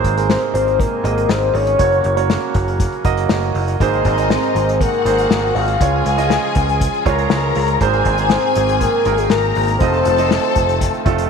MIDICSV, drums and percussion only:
0, 0, Header, 1, 2, 480
1, 0, Start_track
1, 0, Tempo, 500542
1, 1726, Time_signature, 4, 2, 24, 8
1, 10834, End_track
2, 0, Start_track
2, 0, Title_t, "Drums"
2, 41, Note_on_c, 9, 36, 79
2, 42, Note_on_c, 9, 42, 71
2, 136, Note_off_c, 9, 36, 0
2, 138, Note_off_c, 9, 42, 0
2, 168, Note_on_c, 9, 42, 58
2, 264, Note_off_c, 9, 42, 0
2, 284, Note_on_c, 9, 38, 108
2, 380, Note_off_c, 9, 38, 0
2, 403, Note_on_c, 9, 42, 35
2, 499, Note_off_c, 9, 42, 0
2, 525, Note_on_c, 9, 42, 76
2, 621, Note_off_c, 9, 42, 0
2, 649, Note_on_c, 9, 42, 43
2, 745, Note_off_c, 9, 42, 0
2, 763, Note_on_c, 9, 36, 101
2, 771, Note_on_c, 9, 42, 87
2, 859, Note_off_c, 9, 36, 0
2, 867, Note_off_c, 9, 42, 0
2, 1005, Note_on_c, 9, 42, 68
2, 1101, Note_off_c, 9, 42, 0
2, 1128, Note_on_c, 9, 42, 49
2, 1224, Note_off_c, 9, 42, 0
2, 1241, Note_on_c, 9, 38, 113
2, 1337, Note_off_c, 9, 38, 0
2, 1362, Note_on_c, 9, 42, 29
2, 1458, Note_off_c, 9, 42, 0
2, 1484, Note_on_c, 9, 46, 61
2, 1580, Note_off_c, 9, 46, 0
2, 1601, Note_on_c, 9, 42, 53
2, 1697, Note_off_c, 9, 42, 0
2, 1718, Note_on_c, 9, 42, 79
2, 1721, Note_on_c, 9, 36, 92
2, 1814, Note_off_c, 9, 42, 0
2, 1817, Note_off_c, 9, 36, 0
2, 1843, Note_on_c, 9, 42, 36
2, 1938, Note_off_c, 9, 42, 0
2, 1957, Note_on_c, 9, 42, 63
2, 2053, Note_off_c, 9, 42, 0
2, 2082, Note_on_c, 9, 42, 58
2, 2178, Note_off_c, 9, 42, 0
2, 2204, Note_on_c, 9, 38, 106
2, 2300, Note_off_c, 9, 38, 0
2, 2440, Note_on_c, 9, 42, 70
2, 2445, Note_on_c, 9, 36, 94
2, 2536, Note_off_c, 9, 42, 0
2, 2541, Note_off_c, 9, 36, 0
2, 2569, Note_on_c, 9, 42, 47
2, 2665, Note_off_c, 9, 42, 0
2, 2681, Note_on_c, 9, 38, 33
2, 2683, Note_on_c, 9, 36, 99
2, 2684, Note_on_c, 9, 42, 93
2, 2777, Note_off_c, 9, 38, 0
2, 2779, Note_off_c, 9, 36, 0
2, 2780, Note_off_c, 9, 42, 0
2, 2803, Note_on_c, 9, 42, 30
2, 2899, Note_off_c, 9, 42, 0
2, 2921, Note_on_c, 9, 42, 64
2, 2923, Note_on_c, 9, 36, 94
2, 3017, Note_off_c, 9, 42, 0
2, 3018, Note_off_c, 9, 36, 0
2, 3042, Note_on_c, 9, 42, 46
2, 3138, Note_off_c, 9, 42, 0
2, 3159, Note_on_c, 9, 38, 106
2, 3255, Note_off_c, 9, 38, 0
2, 3281, Note_on_c, 9, 42, 29
2, 3377, Note_off_c, 9, 42, 0
2, 3403, Note_on_c, 9, 46, 56
2, 3499, Note_off_c, 9, 46, 0
2, 3529, Note_on_c, 9, 42, 52
2, 3625, Note_off_c, 9, 42, 0
2, 3647, Note_on_c, 9, 36, 98
2, 3652, Note_on_c, 9, 42, 91
2, 3743, Note_off_c, 9, 36, 0
2, 3747, Note_off_c, 9, 42, 0
2, 3771, Note_on_c, 9, 42, 34
2, 3867, Note_off_c, 9, 42, 0
2, 3883, Note_on_c, 9, 42, 60
2, 3884, Note_on_c, 9, 36, 81
2, 3979, Note_off_c, 9, 42, 0
2, 3980, Note_off_c, 9, 36, 0
2, 4007, Note_on_c, 9, 42, 60
2, 4103, Note_off_c, 9, 42, 0
2, 4127, Note_on_c, 9, 38, 105
2, 4223, Note_off_c, 9, 38, 0
2, 4250, Note_on_c, 9, 42, 39
2, 4346, Note_off_c, 9, 42, 0
2, 4370, Note_on_c, 9, 42, 74
2, 4466, Note_off_c, 9, 42, 0
2, 4498, Note_on_c, 9, 42, 49
2, 4594, Note_off_c, 9, 42, 0
2, 4609, Note_on_c, 9, 36, 99
2, 4613, Note_on_c, 9, 42, 89
2, 4705, Note_off_c, 9, 36, 0
2, 4709, Note_off_c, 9, 42, 0
2, 4732, Note_on_c, 9, 42, 30
2, 4828, Note_off_c, 9, 42, 0
2, 4852, Note_on_c, 9, 42, 63
2, 4948, Note_off_c, 9, 42, 0
2, 4969, Note_on_c, 9, 42, 50
2, 5065, Note_off_c, 9, 42, 0
2, 5089, Note_on_c, 9, 38, 112
2, 5185, Note_off_c, 9, 38, 0
2, 5328, Note_on_c, 9, 46, 59
2, 5424, Note_off_c, 9, 46, 0
2, 5446, Note_on_c, 9, 42, 52
2, 5541, Note_off_c, 9, 42, 0
2, 5569, Note_on_c, 9, 36, 97
2, 5569, Note_on_c, 9, 42, 84
2, 5664, Note_off_c, 9, 36, 0
2, 5665, Note_off_c, 9, 42, 0
2, 5808, Note_on_c, 9, 42, 69
2, 5904, Note_off_c, 9, 42, 0
2, 5928, Note_on_c, 9, 42, 60
2, 6024, Note_off_c, 9, 42, 0
2, 6045, Note_on_c, 9, 38, 101
2, 6141, Note_off_c, 9, 38, 0
2, 6282, Note_on_c, 9, 42, 70
2, 6290, Note_on_c, 9, 36, 90
2, 6378, Note_off_c, 9, 42, 0
2, 6386, Note_off_c, 9, 36, 0
2, 6414, Note_on_c, 9, 42, 52
2, 6510, Note_off_c, 9, 42, 0
2, 6531, Note_on_c, 9, 36, 101
2, 6534, Note_on_c, 9, 42, 92
2, 6627, Note_off_c, 9, 36, 0
2, 6630, Note_off_c, 9, 42, 0
2, 6652, Note_on_c, 9, 42, 35
2, 6748, Note_off_c, 9, 42, 0
2, 6770, Note_on_c, 9, 36, 91
2, 6770, Note_on_c, 9, 42, 66
2, 6866, Note_off_c, 9, 36, 0
2, 6866, Note_off_c, 9, 42, 0
2, 6890, Note_on_c, 9, 42, 51
2, 6986, Note_off_c, 9, 42, 0
2, 7002, Note_on_c, 9, 38, 108
2, 7098, Note_off_c, 9, 38, 0
2, 7241, Note_on_c, 9, 46, 65
2, 7337, Note_off_c, 9, 46, 0
2, 7364, Note_on_c, 9, 42, 53
2, 7460, Note_off_c, 9, 42, 0
2, 7488, Note_on_c, 9, 36, 95
2, 7488, Note_on_c, 9, 42, 83
2, 7584, Note_off_c, 9, 36, 0
2, 7584, Note_off_c, 9, 42, 0
2, 7608, Note_on_c, 9, 42, 37
2, 7704, Note_off_c, 9, 42, 0
2, 7721, Note_on_c, 9, 42, 65
2, 7726, Note_on_c, 9, 36, 75
2, 7817, Note_off_c, 9, 42, 0
2, 7822, Note_off_c, 9, 36, 0
2, 7843, Note_on_c, 9, 42, 62
2, 7939, Note_off_c, 9, 42, 0
2, 7958, Note_on_c, 9, 38, 116
2, 8054, Note_off_c, 9, 38, 0
2, 8203, Note_on_c, 9, 42, 77
2, 8299, Note_off_c, 9, 42, 0
2, 8331, Note_on_c, 9, 42, 52
2, 8427, Note_off_c, 9, 42, 0
2, 8447, Note_on_c, 9, 36, 92
2, 8447, Note_on_c, 9, 42, 106
2, 8543, Note_off_c, 9, 36, 0
2, 8543, Note_off_c, 9, 42, 0
2, 8680, Note_on_c, 9, 42, 64
2, 8776, Note_off_c, 9, 42, 0
2, 8801, Note_on_c, 9, 42, 49
2, 8897, Note_off_c, 9, 42, 0
2, 8918, Note_on_c, 9, 38, 108
2, 9014, Note_off_c, 9, 38, 0
2, 9040, Note_on_c, 9, 42, 32
2, 9135, Note_off_c, 9, 42, 0
2, 9160, Note_on_c, 9, 46, 65
2, 9256, Note_off_c, 9, 46, 0
2, 9285, Note_on_c, 9, 42, 52
2, 9381, Note_off_c, 9, 42, 0
2, 9400, Note_on_c, 9, 42, 86
2, 9405, Note_on_c, 9, 36, 102
2, 9496, Note_off_c, 9, 42, 0
2, 9501, Note_off_c, 9, 36, 0
2, 9525, Note_on_c, 9, 42, 38
2, 9621, Note_off_c, 9, 42, 0
2, 9640, Note_on_c, 9, 42, 70
2, 9735, Note_off_c, 9, 42, 0
2, 9766, Note_on_c, 9, 42, 60
2, 9862, Note_off_c, 9, 42, 0
2, 9886, Note_on_c, 9, 38, 109
2, 9981, Note_off_c, 9, 38, 0
2, 10000, Note_on_c, 9, 42, 38
2, 10096, Note_off_c, 9, 42, 0
2, 10122, Note_on_c, 9, 42, 77
2, 10127, Note_on_c, 9, 36, 93
2, 10218, Note_off_c, 9, 42, 0
2, 10223, Note_off_c, 9, 36, 0
2, 10250, Note_on_c, 9, 42, 51
2, 10346, Note_off_c, 9, 42, 0
2, 10366, Note_on_c, 9, 36, 94
2, 10369, Note_on_c, 9, 42, 104
2, 10462, Note_off_c, 9, 36, 0
2, 10465, Note_off_c, 9, 42, 0
2, 10488, Note_on_c, 9, 42, 36
2, 10584, Note_off_c, 9, 42, 0
2, 10604, Note_on_c, 9, 42, 62
2, 10605, Note_on_c, 9, 36, 91
2, 10700, Note_off_c, 9, 42, 0
2, 10701, Note_off_c, 9, 36, 0
2, 10724, Note_on_c, 9, 42, 58
2, 10820, Note_off_c, 9, 42, 0
2, 10834, End_track
0, 0, End_of_file